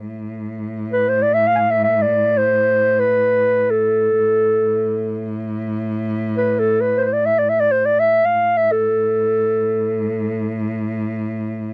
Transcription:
0.07 4.18 A2 medium
0.92 1.10 B4 medium
1.09 1.24 C5 medium
1.22 1.35 D5 medium
1.34 1.48 E5 medium
1.47 1.55 F5 medium
1.55 1.72 F5 medium
1.55 1.59 G#5 medium
1.71 1.83 E5 medium
1.84 2.03 E5 medium
2.02 2.39 D5 medium
2.37 3.01 C5 medium
3.00 3.72 B4 medium
3.70 5.39 A4 medium
4.19 8.32 A2 medium
6.37 6.61 B4 medium
6.59 6.82 A4 medium
6.81 6.99 B4 medium
6.98 7.06 B4 medium
6.98 7.01 C5 medium
7.05 7.15 C5 medium
7.13 7.27 D5 medium
7.26 7.40 E5 medium
7.39 7.51 D5 medium
7.49 7.62 E5 medium
7.60 7.73 D5 medium
7.71 7.87 C5 medium
7.85 8.01 D5 medium
8.00 8.27 E5 medium
8.25 8.59 F5 medium
8.33 11.74 A2 medium
8.57 8.73 E5 medium
8.72 10.71 A4 medium

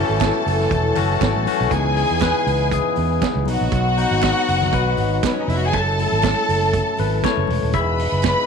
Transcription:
0.00 0.95 E3 medium
0.00 1.53 F#3 medium
0.00 0.96 A3 medium
0.00 0.97 C#4 medium
0.00 1.53 C#4 medium
0.00 1.53 E4 medium
0.00 0.97 F#4 medium
0.00 1.53 A4 medium
0.00 1.67 A4 medium
0.00 1.67 A5 medium
0.09 0.30 G#1 medium
0.20 kick loud
0.20 snare loud
0.20 clap loud
0.20 closed hi-hat medium
0.20 high conga medium
0.46 0.67 F#1 loud
0.46 open hi-hat medium
0.60 snare soft
0.70 0.92 E1 medium
0.70 kick loud
0.70 closed hi-hat medium
0.70 low conga medium
0.95 1.18 F#1 loud
0.95 1.29 E3 medium
0.95 1.30 A3 medium
0.95 1.30 C#4 medium
0.95 1.30 F#4 loud
0.95 clap medium
0.95 open hi-hat medium
0.95 muted conga soft
0.95 low conga medium
1.21 1.32 G#1 medium
1.21 kick loud
1.21 snare loud
1.21 clap loud
1.21 closed hi-hat medium
1.21 high conga medium
1.36 1.45 A1 medium
1.46 1.63 E3 medium
1.46 1.64 A3 medium
1.46 1.64 C#4 medium
1.46 1.64 F#4 medium
1.46 open hi-hat medium
1.46 high conga medium
1.61 1.70 B1 loud
1.70 2.03 C#2 loud
1.70 3.45 C#3 medium
1.70 2.05 E3 medium
1.70 3.45 E3 medium
1.70 3.45 G#3 medium
1.70 5.69 B3 medium
1.70 2.05 B3 medium
1.70 2.06 D#4 medium
1.70 3.18 G#4 medium
1.70 3.18 G#5 loud
1.70 kick medium
1.70 closed hi-hat medium
1.70 muted conga soft
1.96 2.20 G#4 medium
1.96 open hi-hat medium
1.96 muted conga soft
2.10 2.31 E2 medium
2.19 2.74 B4 loud
2.19 kick loud
2.19 snare loud
2.19 clap loud
2.19 closed hi-hat medium
2.19 high conga medium
2.47 2.79 C#2 medium
2.47 open hi-hat medium
2.71 2.84 G#4 medium
2.71 kick medium
2.71 closed hi-hat medium
2.96 3.18 E2 medium
2.96 open hi-hat soft
2.96 muted conga soft
3.21 kick loud
3.21 snare loud
3.21 clap loud
3.21 closed hi-hat medium
3.21 high conga medium
3.35 3.48 C#2 medium
3.45 3.58 B1 medium
3.45 3.81 F#3 medium
3.45 7.70 F#3 medium
3.45 3.81 B3 soft
3.45 3.81 D#4 medium
3.45 5.71 D#4 medium
3.45 5.15 F#4 loud
3.45 5.15 F#5 loud
3.45 open hi-hat medium
3.45 high conga medium
3.61 3.71 A#1 medium
3.72 4.04 B1 loud
3.72 kick loud
3.72 closed hi-hat medium
3.72 muted conga soft
3.97 4.23 D#4 medium
3.97 open hi-hat medium
3.97 muted conga soft
4.11 4.32 G#1 loud
4.21 4.75 F#4 medium
4.21 kick loud
4.21 snare loud
4.21 clap loud
4.21 closed hi-hat medium
4.21 high conga medium
4.48 4.69 F#1 loud
4.48 open hi-hat medium
4.61 snare soft
4.61 low conga medium
4.71 4.94 B1 medium
4.71 4.97 B4 loud
4.71 kick loud
4.71 closed hi-hat medium
4.71 low conga medium
4.97 5.19 G#1 medium
4.97 open hi-hat medium
4.97 muted conga medium
4.97 low conga medium
5.23 5.31 B3 medium
5.23 5.32 B4 medium
5.23 kick loud
5.23 snare loud
5.23 clap loud
5.23 closed hi-hat medium
5.23 high conga medium
5.32 5.40 C#4 medium
5.32 5.40 C#5 medium
5.41 5.49 D#4 medium
5.41 5.48 D#5 medium
5.48 5.73 F1 medium
5.48 5.57 E4 medium
5.48 5.57 E5 medium
5.48 open hi-hat medium
5.48 high conga medium
5.57 5.65 F#4 medium
5.57 5.65 F#5 medium
5.66 5.74 G#4 loud
5.66 5.74 G#5 loud
5.73 6.05 F#1 medium
5.73 7.71 C#4 medium
5.73 7.72 E4 medium
5.73 7.72 A4 medium
5.73 7.46 A4 medium
5.73 7.46 A5 loud
5.73 kick loud
5.73 closed hi-hat medium
5.73 muted conga medium
5.98 6.69 F#3 medium
5.98 6.70 A3 soft
5.98 6.70 E4 medium
5.98 open hi-hat medium
5.98 muted conga soft
6.12 6.33 G#1 medium
6.22 kick loud
6.22 snare loud
6.22 clap loud
6.22 closed hi-hat medium
6.22 high conga medium
6.49 6.80 F#1 loud
6.49 open hi-hat medium
6.73 kick medium
6.73 closed hi-hat medium
6.97 7.20 G#1 medium
6.97 7.25 B4 medium
6.97 open hi-hat medium
6.97 muted conga medium
7.23 7.46 G#3 soft
7.23 7.46 A3 soft
7.23 7.46 E4 medium
7.23 7.71 C#5 loud
7.23 kick loud
7.23 snare loud
7.23 clap loud
7.23 closed hi-hat medium
7.23 high conga medium
7.37 7.47 F#1 medium
7.47 7.60 E1 medium
7.47 open hi-hat medium
7.47 high conga medium
7.63 7.74 D#1 medium
7.73 8.06 E1 loud
7.73 8.46 E3 medium
7.73 8.46 B3 medium
7.73 8.46 D#4 medium
7.73 8.46 G#4 medium
7.73 8.46 B4 loud
7.73 7.97 E5 loud
7.73 8.46 B5 loud
7.73 kick loud
7.73 closed hi-hat medium
7.73 muted conga soft
7.98 open hi-hat medium
7.98 muted conga soft
8.12 8.33 F#1 medium
8.22 kick loud
8.22 snare loud
8.22 clap loud
8.22 closed hi-hat medium
8.22 high conga medium

